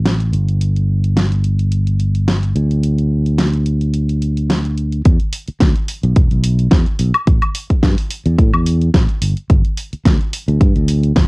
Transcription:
Already playing: A1
0.06 snare, closed hi-hat
0.20 closed hi-hat
0.32 G1, closed hi-hat
0.48 closed hi-hat
0.61 closed hi-hat
0.76 closed hi-hat
1.04 closed hi-hat
1.17 snare, closed hi-hat
1.32 closed hi-hat
1.44 closed hi-hat
1.59 closed hi-hat
1.72 closed hi-hat
1.87 closed hi-hat
2.00 closed hi-hat
2.15 closed hi-hat
2.28 snare, closed hi-hat
2.43 closed hi-hat
2.55 D2, closed hi-hat
2.71 closed hi-hat
2.83 closed hi-hat
2.98 closed hi-hat
3.26 closed hi-hat
3.38 snare, closed hi-hat
3.54 closed hi-hat
3.66 closed hi-hat
3.81 closed hi-hat
3.94 closed hi-hat
4.09 closed hi-hat
4.22 closed hi-hat
4.37 closed hi-hat
4.50 snare, closed hi-hat
4.65 closed hi-hat
4.77 closed hi-hat
4.92 closed hi-hat
5.05 E2, kick, closed hi-hat
5.20 closed hi-hat
5.33 open hi-hat
5.48 muted fingered electric bass stroke, closed hi-hat
5.60 D2, kick, snare, closed hi-hat
5.76 closed hi-hat
5.88 open hi-hat
6.04 B1, closed hi-hat
6.16 E1, kick, closed hi-hat
6.31 B1, closed hi-hat
6.44 open hi-hat
6.59 closed hi-hat
6.71 E2, kick, snare, closed hi-hat
6.87 closed hi-hat
6.99 B1, open hi-hat
7.15 closed hi-hat, high woodblock
7.27 A1, kick, closed hi-hat
7.42 closed hi-hat, high woodblock
7.55 open hi-hat
7.70 muted fingered electric bass stroke, kick, closed hi-hat
7.83 G2, kick, snare, closed hi-hat
7.98 open hi-hat
8.10 open hi-hat
8.26 E2, closed hi-hat
8.38 A2, kick, closed hi-hat
8.53 E2, closed hi-hat, high woodblock
8.66 open hi-hat
8.82 closed hi-hat
8.94 A1, kick, snare, closed hi-hat
9.09 closed hi-hat
9.22 G1, open hi-hat
9.37 closed hi-hat
9.50 G1, kick, closed hi-hat
9.65 closed hi-hat
9.77 open hi-hat
9.93 muted fingered electric bass stroke, closed hi-hat
10.05 D2, kick, snare, closed hi-hat
10.21 closed hi-hat
10.33 open hi-hat
10.48 D2, closed hi-hat
10.61 G2, kick, closed hi-hat
10.76 D2, closed hi-hat
10.88 open hi-hat
11.04 closed hi-hat
11.16 G1, kick, snare, closed hi-hat

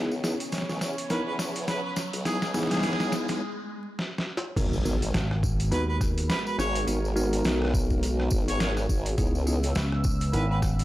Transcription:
Already playing: C#2 B3 C#4 D#4 E4 G#4 C#5, riser
0.11 tambourine
0.24 B3 D#4 E4 G#4, snare, tambourine
0.40 closed hi-hat, tambourine
0.52 snare, closed hi-hat, tambourine
0.58 snare
0.62 snare
0.69 C#2, snare, tambourine
0.72 snare
0.78 snare
0.81 E2, snare, tambourine
0.98 closed hi-hat, tambourine
1.10 B3 D#4 E4 A#4 B4, snare, closed hi-hat, tambourine
1.27 E2 B4
1.39 snare, tambourine
1.55 closed hi-hat, tambourine
1.68 B4, snare, closed hi-hat, tambourine
1.85 B4
1.96 snare, tambourine
2.13 C#2, closed hi-hat, tambourine
2.25 B3 D#4 E4 G#4, snare, closed hi-hat, tambourine
2.42 G#4, snare, tambourine
2.54 C#2 B3 D#4 E4 G#4, snare, tambourine
2.59 snare
2.63 snare
2.67 snare, tambourine
2.71 G#4, snare, closed hi-hat
2.74 snare
2.77 snare
2.79 snare, tambourine
2.83 snare, closed hi-hat
2.89 snare
2.93 snare
3.00 C#2, snare, tambourine
3.12 snare, tambourine
3.28 C#2, snare, closed hi-hat, tambourine
3.99 snare
4.18 snare
4.37 snare
4.56 G#1 G#3 B3 D#4 F#4 A#4, kick, closed hi-hat, crash, tambourine, impact
4.73 tambourine
4.85 B3 D#4 F#4 A#4, tambourine
5.02 closed hi-hat, tambourine
5.14 G#1, snare, closed hi-hat, tambourine
5.31 cross-stick
5.43 kick, tambourine
5.60 closed hi-hat, tambourine
5.72 D#2 B3 D#4 F#4 B4, closed hi-hat, tambourine
5.89 B4
6.01 kick, cross-stick, tambourine
6.18 closed hi-hat, tambourine
6.30 B4, snare, closed hi-hat, tambourine
6.47 B4, tambourine
6.58 G#1 C#5, cross-stick, tambourine
6.75 closed hi-hat, tambourine
6.87 G#1 B3 D#4 F#4 A#4, closed hi-hat, tambourine
7.05 tambourine
7.16 B3 D#4 F#4 A#4, tambourine
7.33 closed hi-hat, tambourine
7.45 B1, snare, closed hi-hat, tambourine
7.62 cross-stick
7.65 cross-stick
7.68 cross-stick
7.71 kick, cross-stick, tambourine
7.90 kick, tambourine
8.03 closed hi-hat, tambourine
8.20 cross-stick
8.30 G#1, kick, tambourine
8.48 C#5, closed hi-hat, tambourine
8.60 C#5, snare, closed hi-hat, tambourine
8.77 cross-stick, tambourine
8.89 G#1, kick, tambourine
9.06 closed hi-hat, tambourine
9.18 C#2 B3 C#4 D#4 E4 G#4 E6, kick, closed hi-hat, tambourine
9.35 tambourine
9.47 B3 D#4 E4 G#4, tambourine
9.63 closed hi-hat, tambourine
9.75 C#2, snare, closed hi-hat, tambourine
9.92 cross-stick
10.04 kick, tambourine
10.21 closed hi-hat, tambourine
10.33 G#1 B3 D#4 E4 A#4 B4, closed hi-hat, tambourine
10.50 B4
10.62 kick, cross-stick, tambourine
10.79 closed hi-hat, tambourine

